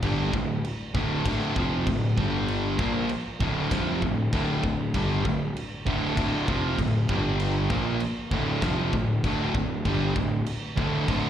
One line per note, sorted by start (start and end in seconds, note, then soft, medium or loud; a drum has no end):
0.02 0.31 G1 loud
0.02 0.32 G2 medium
0.02 0.33 D3 loud
0.02 0.33 G3 loud
0.02 kick loud
0.02 crash medium
0.33 0.62 D1 medium
0.33 0.58 D2 medium
0.33 0.58 A2 medium
0.33 kick loud
0.64 crash medium
0.94 1.23 D1 loud
0.94 1.25 D2 loud
0.94 1.25 A2 loud
0.94 1.25 D3 loud
0.94 kick loud
1.26 1.54 D1 loud
1.26 1.56 D2 loud
1.26 1.56 A2 loud
1.26 1.57 D3 loud
1.26 kick loud
1.26 crash medium
1.56 1.85 F1 medium
1.56 1.86 F2 medium
1.56 1.87 C3 loud
1.56 1.87 F3 loud
1.56 kick loud
1.87 2.15 D1 medium
1.87 2.12 D2 medium
1.87 2.12 A2 medium
1.87 kick loud
1.87 crash medium
2.17 2.75 G1 loud
2.17 2.79 G2 medium
2.17 2.79 D3 medium
2.17 2.79 G3 loud
2.17 kick loud
2.48 crash medium
2.79 3.08 A#1 loud
2.79 3.09 A#2 medium
2.79 3.09 F3 medium
2.79 3.10 A#3 loud
2.79 kick loud
3.09 crash medium
3.40 3.69 D1 medium
3.40 3.70 D2 medium
3.40 3.71 A2 loud
3.40 3.71 D3 loud
3.40 kick loud
3.71 4.00 F1 medium
3.71 4.01 F2 loud
3.71 4.02 C3 loud
3.71 4.02 F3 loud
3.71 kick loud
3.71 snare loud
3.71 crash medium
4.02 4.31 D1 medium
4.02 4.27 D2 medium
4.02 4.27 A2 medium
4.02 kick medium
4.33 4.61 D1 loud
4.33 4.62 D2 loud
4.33 4.63 A2 loud
4.33 4.63 D3 loud
4.33 kick loud
4.33 crash medium
4.64 4.92 D1 medium
4.64 4.88 D2 medium
4.64 4.88 A2 medium
4.64 kick medium
4.94 5.23 G1 loud
4.94 5.24 G2 medium
4.94 5.24 D3 loud
4.94 5.25 G3 loud
4.94 kick loud
4.94 crash medium
5.25 5.53 D1 medium
5.25 5.49 D2 medium
5.25 5.49 A2 medium
5.25 kick loud
5.57 crash medium
5.87 6.15 D1 medium
5.87 6.16 D2 medium
5.87 6.17 A2 loud
5.87 6.17 D3 loud
5.87 kick loud
6.17 6.46 D1 medium
6.17 6.47 D2 loud
6.17 6.47 A2 loud
6.17 6.47 D3 loud
6.17 kick loud
6.17 crash medium
6.48 6.76 F1 medium
6.48 6.78 F2 medium
6.48 6.78 C3 loud
6.48 6.78 F3 loud
6.48 kick loud
6.79 7.07 D1 medium
6.79 7.03 D2 medium
6.79 7.03 A2 medium
6.79 kick medium
6.79 crash medium
7.09 7.66 G1 loud
7.09 7.70 G2 medium
7.09 7.70 D3 medium
7.09 7.71 G3 medium
7.09 kick loud
7.40 crash medium
7.70 7.99 A#1 loud
7.70 8.01 A#2 medium
7.70 8.01 F3 medium
7.70 8.01 A#3 medium
7.70 kick loud
8.00 crash medium
8.31 8.60 D1 medium
8.31 8.61 D2 medium
8.31 8.62 A2 loud
8.31 8.62 D3 loud
8.31 kick loud
8.62 8.91 F1 loud
8.62 8.92 F2 medium
8.62 8.93 C3 loud
8.62 8.93 F3 loud
8.62 kick loud
8.62 snare loud
8.62 crash medium
8.93 9.21 D1 medium
8.93 9.18 D2 medium
8.93 9.18 A2 medium
8.93 kick medium
9.24 9.52 D1 loud
9.24 9.54 D2 loud
9.24 9.54 A2 loud
9.24 9.54 D3 loud
9.24 kick loud
9.24 crash medium
9.55 9.83 D1 medium
9.55 9.79 D2 medium
9.55 9.80 A2 medium
9.55 kick loud
9.85 10.14 G1 loud
9.85 10.15 G2 loud
9.85 10.15 D3 loud
9.85 10.15 G3 loud
9.85 kick loud
9.85 crash medium
10.16 10.44 D1 medium
10.16 10.40 D2 medium
10.16 10.41 A2 medium
10.16 kick loud
10.46 crash medium
10.77 11.06 D1 loud
10.77 11.07 D2 loud
10.77 11.07 A2 loud
10.77 11.07 D3 loud
10.77 kick loud
11.08 11.30 D1 loud
11.08 11.30 D2 medium
11.08 11.30 A2 loud
11.08 11.30 D3 loud
11.08 kick loud
11.08 crash medium